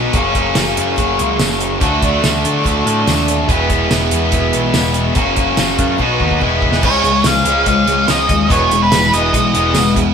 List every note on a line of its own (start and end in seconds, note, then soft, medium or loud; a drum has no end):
0.00 0.12 B2 medium
0.00 0.13 D#3 medium
0.00 0.14 F#3 medium
0.00 0.14 G#3 medium
0.00 0.13 B3 medium
0.00 0.14 D#4 medium
0.00 0.15 F#4 medium
0.00 0.16 F#4 medium
0.12 0.50 F#1 loud
0.12 1.79 F#2 medium
0.12 1.80 C#3 medium
0.12 0.35 F#3 medium
0.12 0.35 A#3 medium
0.12 0.34 C#4 medium
0.12 0.32 G#4 medium
0.12 kick loud
0.12 closed hi-hat medium
0.16 1.81 F#4 medium
0.34 0.55 A#3 soft
0.34 0.56 C#4 medium
0.34 0.55 G#4 medium
0.34 kick medium
0.34 closed hi-hat medium
0.55 0.74 F#1 medium
0.55 0.96 F#3 medium
0.55 0.96 A#3 medium
0.55 0.96 C#4 medium
0.55 0.97 G#4 medium
0.55 snare loud
0.55 closed hi-hat medium
0.55 tambourine loud
0.77 0.95 F#2 medium
0.77 closed hi-hat medium
0.96 1.16 F#1 medium
0.96 1.36 F#3 medium
0.96 1.38 A#3 medium
0.96 1.38 C#4 medium
0.96 1.39 G#4 medium
0.96 kick medium
0.96 closed hi-hat medium
1.19 1.38 C#2 medium
1.19 closed hi-hat medium
1.38 1.76 F#1 medium
1.38 1.80 F#3 medium
1.38 1.81 A#3 medium
1.38 1.81 C#4 medium
1.38 1.81 G#4 medium
1.38 snare loud
1.38 closed hi-hat medium
1.38 tambourine loud
1.50 snare soft
1.60 closed hi-hat medium
1.80 2.18 D2 loud
1.80 2.02 D3 medium
1.80 3.47 F#3 loud
1.80 2.02 A3 medium
1.80 2.02 D4 medium
1.80 2.01 F#4 medium
1.80 kick loud
1.80 closed hi-hat medium
2.02 2.21 A3 soft
2.02 2.22 D4 soft
2.02 2.23 F#4 medium
2.02 kick medium
2.02 closed hi-hat medium
2.22 2.42 D2 medium
2.22 2.63 D3 medium
2.22 2.64 A3 medium
2.22 2.64 D4 medium
2.22 2.65 F#4 medium
2.22 snare loud
2.22 closed hi-hat medium
2.22 tambourine loud
2.45 2.63 D3 medium
2.45 closed hi-hat medium
2.64 2.83 D2 medium
2.64 3.05 D3 medium
2.64 3.06 A3 medium
2.64 3.07 D4 medium
2.64 3.07 F#4 loud
2.64 kick medium
2.64 closed hi-hat medium
2.85 3.04 A2 medium
2.85 closed hi-hat medium
3.06 3.43 D#2 medium
3.06 3.28 D3 medium
3.06 3.28 A3 medium
3.06 3.27 D4 medium
3.06 3.26 F#4 medium
3.06 snare loud
3.06 closed hi-hat medium
3.06 tambourine loud
3.18 snare soft
3.27 3.49 A3 soft
3.27 3.49 D4 soft
3.27 3.48 F#4 medium
3.27 closed hi-hat medium
3.49 3.85 E1 medium
3.49 3.69 E2 medium
3.49 3.70 B2 medium
3.49 3.70 E3 medium
3.49 3.70 G#3 medium
3.49 3.68 B3 medium
3.49 5.15 E4 loud
3.49 3.68 G#4 medium
3.49 kick loud
3.49 closed hi-hat medium
3.69 3.88 E3 soft
3.69 3.89 G#3 medium
3.69 3.90 B3 medium
3.69 3.90 G#4 medium
3.69 kick medium
3.69 closed hi-hat medium
3.89 4.09 E1 medium
3.89 4.31 E3 medium
3.89 4.32 G#3 medium
3.89 4.32 B3 medium
3.89 4.32 G#4 medium
3.89 snare loud
3.89 closed hi-hat medium
3.89 tambourine loud
4.11 4.30 E2 medium
4.11 closed hi-hat medium
4.31 4.50 E1 medium
4.31 4.73 E2 medium
4.31 4.74 B2 medium
4.31 4.72 E3 medium
4.31 4.74 G#3 medium
4.31 4.74 B3 loud
4.31 4.75 G#4 medium
4.31 kick medium
4.31 closed hi-hat medium
4.53 4.71 B1 medium
4.53 closed hi-hat medium
4.73 5.10 E1 medium
4.73 5.14 E3 medium
4.73 5.15 G#3 medium
4.73 5.15 B3 medium
4.73 5.16 G#4 medium
4.73 snare loud
4.73 closed hi-hat medium
4.73 tambourine loud
4.94 closed hi-hat medium
5.15 5.52 F#1 medium
5.15 5.97 F#2 medium
5.15 5.98 C#3 medium
5.15 5.36 F#3 medium
5.15 5.36 A#3 medium
5.15 5.36 C#4 medium
5.15 5.99 F#4 loud
5.15 5.34 G#4 medium
5.15 kick loud
5.15 closed hi-hat medium
5.36 5.56 A#3 soft
5.36 5.57 C#4 soft
5.36 5.57 G#4 medium
5.36 kick medium
5.36 closed hi-hat medium
5.56 5.76 F#1 medium
5.56 5.78 F#3 medium
5.56 5.77 A#3 medium
5.56 5.76 C#4 medium
5.56 5.75 G#4 medium
5.56 snare loud
5.56 closed hi-hat medium
5.56 tambourine loud
5.76 5.97 F#2 medium
5.76 5.98 A#3 soft
5.76 5.99 C#4 medium
5.76 5.98 G#4 medium
5.76 kick medium
5.76 closed hi-hat medium
5.98 6.18 B1 medium
5.98 6.40 B2 medium
5.98 6.39 D#3 medium
5.98 6.40 F#3 medium
5.98 6.39 G#3 medium
5.98 6.39 B3 medium
5.98 6.41 D#4 medium
5.98 6.41 F#4 medium
5.98 kick medium
6.20 6.39 D#2 medium
6.20 kick medium
6.31 kick medium
6.39 6.83 E1 medium
6.39 6.81 E2 medium
6.39 6.82 B2 medium
6.39 6.61 E3 medium
6.39 6.61 G#3 medium
6.39 6.60 B3 medium
6.39 6.59 E4 medium
6.39 kick medium
6.44 6.83 G#4 loud
6.60 6.81 E3 soft
6.60 6.81 G#3 soft
6.60 6.82 B3 soft
6.60 6.82 E4 soft
6.60 kick medium
6.72 snare medium
6.81 7.02 C#2 loud
6.81 7.03 C#3 medium
6.81 7.03 F3 medium
6.81 7.02 G#3 medium
6.81 7.01 C#4 medium
6.81 7.00 F4 medium
6.81 kick loud
6.81 crash loud
6.85 7.27 C#5 medium
7.01 7.22 C#2 medium
7.01 7.23 C#3 medium
7.01 7.22 G#3 soft
7.01 7.22 C#4 soft
7.01 7.22 F4 soft
7.01 snare soft
7.01 closed hi-hat medium
7.22 7.43 C#2 medium
7.22 7.65 C#3 medium
7.22 7.63 F3 medium
7.22 7.65 G#3 medium
7.22 7.65 C#4 medium
7.22 7.65 F4 medium
7.22 snare loud
7.22 closed hi-hat loud
7.22 tambourine loud
7.26 7.67 F5 medium
7.44 7.64 C#2 medium
7.44 7.65 C#3 medium
7.44 8.49 F3 medium
7.44 7.65 G#3 medium
7.44 7.65 C#4 medium
7.44 8.48 F4 medium
7.44 closed hi-hat medium
7.64 7.86 C#2 medium
7.64 7.85 C#3 medium
7.64 7.86 F3 medium
7.64 7.87 G#3 medium
7.64 7.85 C#4 medium
7.64 7.84 F4 medium
7.64 kick medium
7.64 closed hi-hat medium
7.68 8.10 F5 medium
7.85 8.06 C#2 medium
7.85 8.06 C#3 medium
7.85 8.07 G#3 soft
7.85 8.06 C#4 soft
7.85 8.07 F4 medium
7.85 closed hi-hat medium
8.07 8.27 C#2 medium
8.07 8.28 C#3 medium
8.07 8.29 F3 medium
8.07 8.29 G#3 medium
8.07 8.27 C#4 medium
8.07 8.27 F4 medium
8.07 8.52 D#5 medium
8.07 snare loud
8.07 closed hi-hat medium
8.07 tambourine loud
8.28 8.48 D#2 medium
8.28 8.47 C#3 medium
8.28 8.48 G#3 medium
8.28 8.49 C#4 soft
8.28 8.49 F4 soft
8.28 kick medium
8.28 closed hi-hat medium
8.48 8.69 E1 medium
8.48 8.70 E2 medium
8.48 8.70 B2 medium
8.48 8.70 E3 medium
8.48 8.70 G#3 medium
8.48 8.69 B3 medium
8.48 8.68 E4 medium
8.48 9.11 G#4 medium
8.48 8.80 C#5 medium
8.48 kick loud
8.48 closed hi-hat medium
8.70 8.90 E1 medium
8.70 8.90 E3 soft
8.70 8.91 G#3 soft
8.70 8.91 B3 medium
8.70 8.91 E4 medium
8.70 closed hi-hat medium
8.82 9.14 B4 loud
8.91 9.11 E1 medium
8.91 9.33 E2 medium
8.91 9.33 B2 medium
8.91 9.32 E3 medium
8.91 9.32 G#3 medium
8.91 9.33 B3 medium
8.91 9.33 E4 medium
8.91 snare loud
8.91 closed hi-hat medium
8.91 tambourine loud
9.12 9.32 E1 medium
9.12 10.14 E2 medium
9.12 10.14 B2 medium
9.12 9.32 E3 medium
9.12 9.32 G#3 medium
9.12 9.33 B3 medium
9.12 10.14 G#4 medium
9.12 9.93 D#5 loud
9.12 closed hi-hat medium
9.33 9.53 B1 medium
9.33 9.54 E3 medium
9.33 9.53 G#3 medium
9.33 9.53 B3 medium
9.33 9.52 E4 medium
9.33 kick medium
9.33 closed hi-hat medium
9.53 9.73 E1 medium
9.53 9.73 E3 soft
9.53 9.74 G#3 soft
9.53 9.74 B3 medium
9.53 9.74 E4 soft
9.53 closed hi-hat medium
9.73 9.95 E1 medium
9.73 9.95 E2 medium
9.73 9.96 B2 medium
9.73 9.95 E3 medium
9.73 9.95 G#3 medium
9.73 9.93 B3 medium
9.73 9.92 E4 medium
9.73 snare loud
9.73 closed hi-hat medium
9.73 tambourine loud
9.94 10.14 E1 loud
9.94 10.14 E3 medium
9.94 10.14 G#3 soft
9.94 10.14 B3 medium
9.94 10.14 E4 medium
9.94 kick medium
9.94 closed hi-hat medium